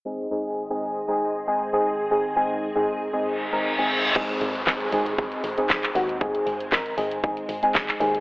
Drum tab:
CC |----------------|----------------|x---------------|----------------|
HH |----------------|----------------|-xox-xox-xox-xox|-xox-xox-xox-xox|
CP |----------------|----------------|----x-------xx--|----x-------xx--|
SD |----------------|----------------|----o-------o---|----o-------o---|
BD |----------------|----------------|o---o---o---o---|o---o---o---o---|